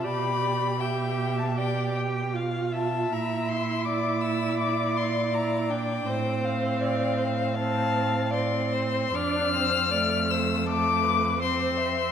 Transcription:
<<
  \new Staff \with { instrumentName = "Violin" } { \time 4/4 \key f \lydian \tempo 4 = 80 b''4 g''8. a''16 g''8 r4 a''8 | bes''8 c'''8 d'''8 e'''8 d'''8 c'''8 bes''8 g''8~ | g''8 f''4. a''4 c'''4 | f'''4. e'''8 d'''4 c'''4 | }
  \new Staff \with { instrumentName = "Violin" } { \time 4/4 \key f \lydian d''4 e''4 d''8 g''8 f''8 e''8~ | e''4 d''2. | c''4 d''8 c''8 f''4 d''8 c''8 | d''8 c''8 d''8 c''8 a'8 b'8 c''8 e''8 | }
  \new Staff \with { instrumentName = "Viola" } { \time 4/4 \key f \lydian g'4 g'4 g'4 f'4 | e'2. e'8 d'8 | c'2 c'4 c'4 | d'8 c'8 a4 a4 c'4 | }
  \new Staff \with { instrumentName = "Cello" } { \clef bass \time 4/4 \key f \lydian b,1 | bes,1 | a,1 | f,1 | }
>>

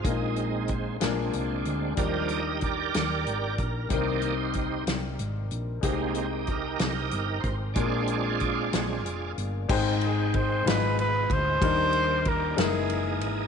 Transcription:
<<
  \new Staff \with { instrumentName = "Trumpet" } { \time 6/8 \key ees \major \tempo 4. = 62 r2. | r2. | r2. | r2. |
r2. | r8 aes'8 c''8 ces''8 ces''8 c''8~ | c''4 bes'8 aes'4 r8 | }
  \new Staff \with { instrumentName = "Tonewheel organ" } { \time 6/8 \key ees \major << { r2. | <g' bes' ees''>4 <g' bes' d''>4. bes'8 | <ees' g' c''>4. r4. | <ees' g'>4 <ees' g' bes'>4. c''8 |
<f' aes' d''>2~ <f' aes' d''>8 r8 | <ees aes c' g''>4. <ces aes ees' f'>4. | <ees bes f' g' d''>4. <fes bes g' aes' ees''>4. | } \\ { <aes c' ees'>4. <aes c' d'>4. | <f g d''>8 r2 r8 | <ees bes d''>8 r2 r8 | <aes bes c'>8 r2 r8 |
<aes c' d'>4. <aes c' d'>8 r4 | r2. | r2. | } >> }
  \new Staff \with { instrumentName = "Grand piano" } { \time 6/8 \key ees \major <aes d' ees' f' bes'>4. <aes d' f' bes'>4. | <g d' ees' bes'>2. | <g c' ees' bes'>2. | <aes ees' g' c''>2. |
<aes d' f' bes'>2. | <aes ees' c'' g''>4. <aes ees' f' ces'''>4. | <g d' ees' bes'>4. <aes ees' fes' bes'>4. | }
  \new Staff \with { instrumentName = "Grand piano" } { \clef bass \time 6/8 \key ees \major bes,4. bes,4. | ees4. r4. | c4. r4. | c4. r4. |
bes,4. r4. | aes,4. aes,4. | ees4. r4. | }
  \new Staff \with { instrumentName = "Fingered electric bass" } { \clef bass \time 6/8 \key ees \major bes,,4. bes,,8 c,8 d,8 | ees,4. ees,8 aes,,8 bes,,8 | c,4. c,8 aes,,8 bes,,8 | c,4. c,8 g,,8 aes,,8 |
bes,,4. bes,,8 f,,8 g,,8 | aes,,4. aes,,4 d,8 | ees,4. ges,,4 aes,,8 | }
  \new DrumStaff \with { instrumentName = "Drums" } \drummode { \time 6/8 <hh bd>8 hh8 <hh bd>8 <hh sn>8 hh8 hh8 | <hh bd>8 hh8 <hh bd>8 <hh sn>8 hh8 <hh bd>8 | <hh bd>8 hh8 <hh bd>8 <hh sn>8 hh8 hh8 | <hh bd>8 hh8 <hh bd>8 <hh sn>8 hh8 <hh bd>8 |
<hh bd>8 hh8 <hh bd>8 <hh sn>8 hh8 hh8 | <cymc bd>8 cymr8 <bd cymr>8 <cymr sn>8 cymr8 <bd cymr>8 | <bd cymr>8 cymr8 <bd cymr>8 <cymr sn>8 cymr8 cymr8 | }
>>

